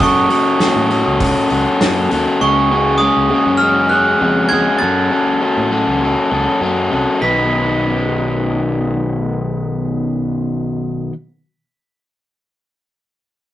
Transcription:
0.00 0.27 F#2 medium
0.00 0.29 F#3 medium
0.00 0.30 C#4 medium
0.00 0.30 F#4 medium
0.00 0.30 A4 medium
0.00 1.78 C#6 medium
0.00 kick loud
0.00 open hi-hat medium
0.29 0.58 F#3 medium
0.29 0.59 C#4 medium
0.29 0.60 F#4 medium
0.29 0.60 A4 medium
0.29 open hi-hat soft
0.59 0.89 F#3 medium
0.59 0.90 C#4 medium
0.59 0.91 F#4 medium
0.59 0.90 A4 medium
0.59 snare loud
0.59 open hi-hat medium
0.76 1.02 A2 medium
0.90 1.20 F#3 medium
0.90 1.22 C#4 medium
0.90 1.22 F#4 medium
0.90 1.21 A4 medium
0.90 open hi-hat soft
1.06 1.33 C#2 medium
1.20 1.50 F#3 medium
1.20 1.51 C#4 medium
1.20 1.51 F#4 medium
1.20 1.51 A4 medium
1.20 kick loud
1.20 open hi-hat medium
1.50 1.64 C#2 medium
1.50 1.81 F#3 medium
1.50 1.82 C#4 medium
1.50 1.83 F#4 medium
1.50 1.82 A4 medium
1.50 open hi-hat soft
1.81 2.08 F#2 medium
1.81 2.10 F#3 medium
1.81 2.11 C#4 medium
1.81 2.12 F#4 medium
1.81 2.12 A4 medium
1.81 snare loud
1.81 open hi-hat medium
2.11 2.25 D#2 medium
2.11 2.41 F#3 medium
2.11 2.42 C#4 medium
2.11 2.42 F#4 medium
2.11 2.40 A4 medium
2.11 open hi-hat soft
2.40 3.08 C#2 medium
2.40 2.70 C#3 medium
2.40 2.71 G#3 medium
2.40 2.72 C#4 medium
2.40 2.72 F#4 medium
2.40 2.73 G#4 medium
2.40 2.97 C#6 medium
2.71 2.99 C#3 medium
2.71 3.01 G#3 medium
2.71 3.02 C#4 medium
2.71 3.02 F#4 medium
2.71 3.03 G#4 medium
2.98 3.29 C#3 medium
2.98 3.30 G#3 medium
2.98 3.61 D#6 medium
3.02 3.31 C#4 medium
3.02 3.32 F#4 medium
3.02 3.32 G#4 medium
3.17 3.30 C#2 medium
3.30 3.60 C#3 medium
3.30 3.61 G#3 medium
3.30 3.62 C#4 medium
3.30 3.62 F#4 medium
3.30 3.62 G#4 medium
3.46 4.13 F#2 medium
3.57 3.90 C#3 medium
3.57 3.87 F6 medium
3.62 3.91 G#3 medium
3.62 3.92 C#4 medium
3.62 3.93 F#4 medium
3.62 3.92 G#4 medium
3.89 4.19 C#3 medium
3.89 4.21 G#3 medium
3.89 4.22 C#4 medium
3.89 4.22 F#4 medium
3.89 4.52 F#6 medium
3.94 4.22 G#4 medium
4.21 4.48 F2 medium
4.21 4.50 C#3 medium
4.21 4.51 G#3 medium
4.21 4.52 C#4 medium
4.21 4.53 F#4 medium
4.21 4.53 G#4 medium
4.49 4.65 F2 medium
4.49 4.79 C#3 medium
4.49 4.80 G#3 medium
4.49 4.81 G#6 medium
4.53 4.80 C#4 medium
4.53 4.81 F#4 medium
4.53 4.81 G#4 medium
4.79 5.09 F#2 medium
4.79 5.10 F#3 medium
4.79 5.10 C#4 medium
4.79 5.11 F#4 medium
4.79 5.12 A4 medium
4.79 6.56 A6 medium
5.11 5.40 F#3 medium
5.11 5.41 C#4 medium
5.11 5.42 F#4 medium
5.11 5.42 A4 medium
5.41 5.70 F#3 medium
5.41 5.70 C#4 medium
5.41 5.71 F#4 medium
5.41 5.72 A4 medium
5.57 5.84 A2 medium
5.71 6.01 F#3 medium
5.71 6.02 C#4 medium
5.71 6.02 F#4 medium
5.71 6.03 A4 medium
5.87 6.14 C#2 medium
6.02 6.30 F#3 medium
6.02 6.31 C#4 medium
6.02 6.32 F#4 medium
6.02 6.32 A4 medium
6.32 6.45 C#2 medium
6.32 6.61 F#3 medium
6.32 6.61 C#4 medium
6.32 6.62 F#4 medium
6.32 6.63 A4 medium
6.61 6.88 F#2 medium
6.61 6.89 F#3 medium
6.61 6.90 C#4 medium
6.61 6.91 F#4 medium
6.61 6.92 A4 medium
6.91 7.05 C2 medium
6.91 7.19 F#3 medium
6.91 7.20 C#4 medium
6.91 7.20 F#4 medium
6.91 7.20 A4 medium
7.20 11.08 B1 medium
7.20 11.12 B2 medium
7.20 11.12 D#3 medium
7.20 11.12 F#3 medium
7.20 11.13 B3 medium
7.20 11.13 D#4 medium
7.20 11.08 B6 medium
7.24 11.14 B4 medium

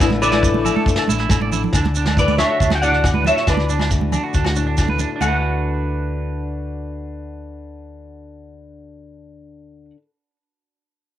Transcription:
0.00 0.68 A1 loud
0.00 0.65 A2 medium
0.00 0.65 D3 medium
0.00 0.19 B3 medium
0.00 0.21 D4 medium
0.00 0.09 E4 medium
0.00 1.74 E4 medium
0.00 muted nylon-string guitar stroke medium
0.00 kick medium
0.00 snare medium
0.00 low agogo medium
0.00 shekere medium
0.10 snare soft
0.10 high conga medium
0.21 1.47 A3 medium
0.21 0.87 D4 medium
0.21 0.31 E4 medium
0.21 1.48 B4 medium
0.21 1.48 D5 medium
0.21 shekere medium
0.32 0.41 E4 medium
0.32 snare medium
0.32 high conga medium
0.32 low agogo medium
0.43 1.08 A3 medium
0.43 kick medium
0.43 shekere medium
0.54 high conga medium
0.65 1.74 D3 medium
0.65 0.74 E4 medium
0.65 low conga medium
0.65 low agogo medium
0.65 shekere medium
0.76 0.85 A4 medium
0.76 high conga medium
0.86 1.52 D4 medium
0.86 muted clean electric guitar stroke medium
0.86 kick medium
0.86 shekere medium
0.96 1.07 A4 medium
0.96 snare medium
0.96 low agogo medium
1.08 1.26 A1 medium
1.08 1.71 A3 medium
1.08 1.18 E4 medium
1.08 high conga medium
1.08 shekere medium
1.19 1.29 E4 medium
1.19 snare soft
1.19 high conga medium
1.29 1.64 A1 medium
1.29 1.74 E2 medium
1.29 1.40 E4 medium
1.29 kick medium
1.29 snare medium
1.29 high conga medium
1.29 low agogo medium
1.29 shekere medium
1.42 1.51 D5 medium
1.42 high conga medium
1.52 1.71 D4 medium
1.52 1.61 E4 medium
1.52 low conga medium
1.52 shekere medium
1.64 low conga medium
1.73 2.42 D2 medium
1.73 3.47 D3 medium
1.73 1.84 D4 medium
1.73 kick medium
1.73 snare medium
1.73 low agogo medium
1.73 shekere medium
1.84 snare soft
1.84 high conga medium
1.95 2.85 B3 medium
1.95 2.05 D4 medium
1.95 shekere medium
2.06 2.15 D4 medium
2.06 snare medium
2.06 high conga medium
2.06 low agogo medium
2.17 3.72 A3 medium
2.17 2.28 E4 medium
2.17 2.38 B4 medium
2.17 2.38 D5 medium
2.17 kick medium
2.17 shekere medium
2.28 2.60 F#4 medium
2.28 high conga medium
2.38 2.48 D4 medium
2.38 2.72 C#5 medium
2.38 2.75 E5 medium
2.38 snare medium
2.38 low conga medium
2.38 low agogo medium
2.38 shekere medium
2.50 2.59 F#4 medium
2.60 3.29 D2 medium
2.60 2.70 D4 medium
2.60 2.82 F#4 medium
2.60 kick medium
2.60 shekere medium
2.70 2.81 F#4 medium
2.70 snare medium
2.70 high conga medium
2.70 low agogo medium
2.75 2.81 G5 medium
2.82 3.47 A2 medium
2.82 2.92 D4 medium
2.82 3.25 F#4 medium
2.82 3.23 D5 medium
2.82 3.22 F#5 loud
2.82 shekere medium
2.93 3.02 D4 medium
2.93 snare soft
3.04 3.68 B3 medium
3.04 muted clean electric guitar stroke medium
3.04 kick medium
3.04 snare medium
3.04 low agogo medium
3.04 shekere medium
3.14 3.24 B4 medium
3.14 high conga medium
3.25 3.35 D4 medium
3.25 3.91 F#4 medium
3.25 3.47 C#5 medium
3.25 3.49 E5 medium
3.25 low conga medium
3.25 shekere medium
3.37 snare soft
3.47 4.16 D2 medium
3.47 5.21 D3 medium
3.47 3.56 D4 medium
3.47 4.97 B4 medium
3.47 4.96 D5 medium
3.47 kick medium
3.47 snare medium
3.47 low agogo medium
3.47 shekere medium
3.57 snare soft
3.57 high conga medium
3.69 4.12 B3 medium
3.69 3.78 D4 medium
3.69 shekere medium
3.79 3.89 D4 medium
3.79 snare medium
3.79 high conga medium
3.79 low agogo medium
3.91 5.19 A3 medium
3.91 4.34 F#4 medium
3.91 kick medium
3.91 snare soft
3.91 shekere medium
4.01 high conga medium
4.12 4.78 B3 medium
4.12 4.22 D4 medium
4.12 low conga medium
4.12 low agogo medium
4.12 shekere medium
4.23 4.33 F#4 medium
4.34 5.03 D2 medium
4.34 4.43 D4 medium
4.34 4.56 F#4 medium
4.34 kick medium
4.34 shekere medium
4.44 4.54 F#4 medium
4.44 snare medium
4.44 high conga medium
4.44 low agogo medium
4.56 5.21 A2 medium
4.56 4.65 D4 medium
4.56 4.99 F#4 medium
4.56 shekere medium
4.67 4.76 D4 medium
4.78 5.25 B3 soft
4.78 4.87 D4 medium
4.78 kick medium
4.78 snare medium
4.78 low agogo medium
4.78 shekere medium
4.88 4.98 B4 medium
4.88 high conga medium
4.99 5.09 D4 medium
4.99 5.19 F#4 medium
4.99 low conga medium
4.99 shekere medium
5.16 9.85 D4 medium
5.21 9.90 D2 medium
5.21 9.95 D3 medium
5.21 9.97 A3 medium
5.21 9.91 F#4 medium
5.21 9.90 F#5 medium
5.21 high conga medium
5.21 low agogo medium
5.21 shekere medium
5.26 10.02 F#4 medium
5.26 9.97 B4 medium
5.26 muted nylon-string guitar stroke medium

